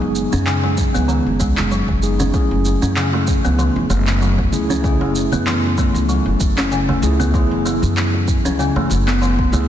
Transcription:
Already playing: G#3 B3 D#4 G#4
0.02 F#1
0.15 shaker
0.32 F#2 C#4, high bongo, high conga, low conga, shaker
0.46 C#3, clap, shaker
0.63 G#3, high bongo
0.78 kick, high conga, shaker
0.94 C#2 B3, high conga, shaker
1.08 D#3, shaker
1.27 F#1
1.40 C#2 G#3, kick, high conga, shaker
1.57 F#1, clap, shaker
1.71 F#3, shaker
1.88 F#1, kick, low conga
2.01 G#3 B3 D#4 G#4, shaker
2.20 C#4, low conga, shaker
2.32 F#3 A3 C#4 E4 G#4, kick, shaker
2.51 F#1
2.65 shaker
2.82 F#2 C#4, high conga, shaker
2.96 C#3, clap, shaker
3.13 A3, high bongo
3.27 kick, high conga, shaker
3.44 C#2 B3, high conga, shaker
3.58 E3, high bongo, shaker
3.76 F#1, high conga
3.90 F#1 A3, high bongo, shaker
4.07 clap, shaker
4.22 F#3, shaker
4.39 kick
4.52 C#2 A3 C#4 E4 G#4, high bongo, low conga, shaker
4.70 C#4, high conga, shaker
4.82 C#3 A3 C#4 E4, kick, shaker
4.86 G#4
5.01 F#1 A3
5.16 shaker
5.32 F#2 B3, high conga, low conga, shaker
5.47 E3, clap, shaker
5.64 high bongo
5.78 A3, kick, high conga, shaker
5.94 C#2, high conga, shaker
6.09 F#3, shaker
6.26 F#1
6.40 F#1, kick, shaker
6.58 C#4, clap, shaker
6.72 C#3, shaker
6.89 A3, low conga
7.02 C#2 A3 C#4 E4 G#4, shaker
7.20 B3, low conga, shaker
7.32 E3 A3 C#4 E4, kick, shaker
7.36 G#4
7.51 F#1
7.66 A3, shaker
7.82 F#2, high conga, shaker
7.97 F#3, clap, shaker
8.14 high bongo
8.27 kick, high conga, shaker
8.45 C#2 C#4, high conga, shaker
8.59 C#3, high bongo, shaker
8.76 F#1 A3, high conga
8.90 F#1, high bongo, shaker
9.07 B3, clap, shaker
9.22 E3, shaker
9.39 kick
9.51 C#2 A3 C#4 E4 G#4, high bongo, low conga, shaker

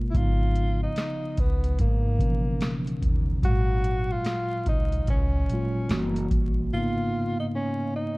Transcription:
Already playing: B2 G#3 A#3 F4
0.11 G#1 C#3 E4, kick
0.15 F3 B3 D#4 F4, closed hi-hat
0.56 closed hi-hat
0.83 D#4
0.96 snare, closed hi-hat
1.37 C#2 B3, kick, closed hi-hat
1.64 closed hi-hat
1.79 G#2 A#3, kick, closed hi-hat
2.18 B2 C#3 E3, kick, closed hi-hat
2.22 F3 C#4
2.61 snare, closed hi-hat
2.87 closed hi-hat
3.02 D#2, kick, closed hi-hat
3.41 G#1 A#2 F#3 G#3, kick, closed hi-hat
3.45 F#4 F5
3.84 closed hi-hat
4.12 F4
4.25 snare, closed hi-hat
4.66 C#2 D#4, kick, closed hi-hat
4.92 closed hi-hat
5.07 C#2 C#4, kick, closed hi-hat
5.49 A#2 F#3 G#3, closed hi-hat
5.53 F4
5.88 F#1 E3 G3 A#3, snare, closed hi-hat
5.92 F#4
6.16 closed hi-hat
6.31 A#1, kick, closed hi-hat
6.72 G#2 C#3 A#3 B3 F4
6.77 D#4
7.40 D#4
7.55 C#4
7.96 D#4

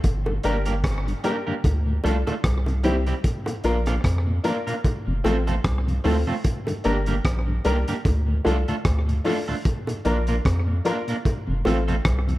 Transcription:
0.04 G1, kick, closed hi-hat, high bongo
0.26 G2 D3, high bongo
0.43 G1 G3 A#3 D4 G4 A#4, closed hi-hat
0.65 G2 D3 A#3 D4 G4 A#4, closed hi-hat
0.84 kick, cross-stick, closed hi-hat
1.07 G2 D3, closed hi-hat
1.24 G3 A#3 D4 G4 A#4, closed hi-hat, high bongo, low bongo
1.47 G2 D3 A#3 D4 G4 A#4
1.64 D2, kick, closed hi-hat, high bongo
1.87 D2 A2
2.04 C2 F3 A3 D4 F4 A4, closed hi-hat, high bongo
2.27 D2 A2 A3 D4 F4 A4, closed hi-hat, high bongo
2.44 C2, kick, cross-stick, closed hi-hat
2.66 C3, closed hi-hat, high bongo
2.84 E3 G3 C4 E4 G4, closed hi-hat, low bongo
3.06 C3 G3 C4 E4 G4, closed hi-hat
3.24 kick, closed hi-hat, high bongo
3.46 A#2, closed hi-hat, high bongo
3.64 A#1 F3 A#3 D4 F4 A#4, closed hi-hat
3.86 A#2 A#3 D4 F4 A#4, cross-stick, closed hi-hat
4.04 F2, kick, cross-stick, closed hi-hat
4.27 A#2
4.44 F3 A#3 D4 F4 A#4, closed hi-hat, high bongo
4.67 A#2 A#3 D4 F4 A#4, closed hi-hat
4.84 kick, closed hi-hat, high bongo
5.07 F1 F2 C3
5.24 A1 F3 A3 C4 F4 A4, closed hi-hat, high bongo
5.47 F2 C3 A3 C4 F4 A4, closed hi-hat
5.64 C2, kick, cross-stick, closed hi-hat
5.87 F2 C3, closed hi-hat
6.04 D2 F3 A3 C4 F4 A4, open hi-hat, low bongo
6.27 F2 C3 A3 C4 F4 A4
6.44 kick, closed hi-hat, high bongo
6.67 G2 D3, closed hi-hat, high bongo
6.84 G1 G3 A#3 D4 G4 A#4, closed hi-hat
7.06 G2 D3 A#3 D4 G4 A#4, closed hi-hat
7.25 A#1, kick, cross-stick, closed hi-hat
7.47 G2 D3
7.65 C2 G3 A#3 D4 G4 A#4, closed hi-hat, high bongo
7.88 G2 D3 A#3 D4 G4 A#4, closed hi-hat
8.05 D2, kick, closed hi-hat, high bongo
8.28 D2 A2
8.44 C2 F3 A3 D4 F4 A4, closed hi-hat, high bongo
8.68 D2 A2 A3 D4 F4 A4, closed hi-hat
8.85 D2, kick, cross-stick, closed hi-hat
9.09 D2 A2, closed hi-hat
9.24 F3 A3 D4 F4 A4, open hi-hat, low bongo
9.48 D2 A2 A3 D4 F4 A4
9.65 kick, closed hi-hat, high bongo
9.87 A#2, closed hi-hat, high bongo
10.05 A#1 F3 A#3 D4 F4 A#4, closed hi-hat
10.27 A#2 A#3 D4 F4 A#4, closed hi-hat
10.45 F2, kick, cross-stick, closed hi-hat
10.68 A#2
10.84 F3 A#3 D4 F4 A#4, closed hi-hat, high bongo
11.07 A#2 A#3 D4 F4 A#4, closed hi-hat
11.25 kick, closed hi-hat, high bongo
11.47 F1 F2 C3
11.65 A1 F3 A3 C4 F4 A4, closed hi-hat, high bongo
11.88 F2 C3 A3 C4 F4 A4, closed hi-hat
12.05 C2, kick, cross-stick, closed hi-hat
12.28 F2 C3, closed hi-hat

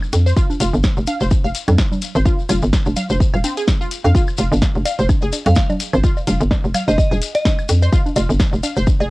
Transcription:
0.03 high woodblock, shekere
0.13 F2, closed hi-hat, high conga, shekere
0.26 C5, shekere
0.37 F4, kick, shekere
0.50 high conga, shekere
0.60 F1 F4, closed hi-hat, shekere
0.74 G1, high conga, shekere
0.83 kick, snare, high woodblock, shekere
0.97 F1, shekere
1.07 F5, closed hi-hat, high conga, shekere
1.21 F1 C5, shekere
1.31 kick, high conga, shekere
1.44 F1 F5, shekere
1.55 closed hi-hat, shekere
1.68 F2, closed hi-hat, high conga, low conga, high woodblock, shekere
1.78 kick, snare, shekere
1.92 high conga, low conga, shekere
2.02 closed hi-hat, shekere
2.15 G#1 C5, shekere
2.26 F4, kick, high conga, shekere
2.39 shekere
2.49 F1 F4, closed hi-hat, high conga, low conga, high woodblock, shekere
2.62 G1, shekere
2.73 kick, snare, shekere
2.85 F1, high conga, shekere
2.96 F5, closed hi-hat, low conga, shekere
3.10 F1 C5, high conga, shekere
3.20 kick, shekere
3.33 D#1 F5, high woodblock, shekere
3.44 C4, closed hi-hat, high conga, shekere
3.57 G#4, closed hi-hat, shekere
3.67 kick, snare, high conga, shekere
3.81 F4, shekere
3.91 closed hi-hat, shekere
4.04 F2 F5, high conga, shekere
4.15 F4, kick, high conga, shekere
4.27 high woodblock, shekere
4.37 F1 F4, closed hi-hat, shekere
4.52 G1, high bongo, high conga, shekere
4.62 kick, snare, shekere
4.75 F1, high conga, shekere
4.85 F5, closed hi-hat, high bongo, shekere
4.99 F1 C5, shekere
5.09 kick, high conga, high woodblock, shekere
5.22 F1 G#4, shekere
5.33 closed hi-hat, high bongo, high conga, shekere
5.46 F2 F5, closed hi-hat, low conga, shekere
5.55 kick, snare, shekere
5.70 high bongo, high conga, low conga, shekere
5.80 closed hi-hat, shekere
5.93 G#1 C5, high conga, high woodblock, shekere
6.04 F4, kick, shekere
6.17 high bongo, shekere
6.27 F1 F4, closed hi-hat, high conga, low conga, shekere
6.40 G1, shekere
6.51 kick, snare, high bongo, high conga, shekere
6.64 F1, shekere
6.74 F5, closed hi-hat, low conga, high woodblock, shekere
6.88 F1 C5 D#5, high conga, shekere
6.98 D#5, kick, high bongo, shekere
7.11 D#1 G#4, high conga, shekere
7.22 closed hi-hat, shekere
7.35 D#5, closed hi-hat, high bongo, shekere
7.45 kick, snare, high conga, shekere
7.59 high woodblock, shekere
7.69 F2, closed hi-hat, high conga, shekere
7.82 C5, high bongo, shekere
7.93 F4, kick, shekere
8.06 high conga, shekere
8.16 F1 F4, closed hi-hat, high bongo, shekere
8.29 G1, high conga, shekere
8.40 kick, snare, high woodblock, shekere
8.53 F1, shekere
8.63 F5, closed hi-hat, high bongo, high conga, shekere
8.77 F1 C5, shekere
8.87 kick, high conga, shekere
9.00 F1 G#4, high bongo, shekere

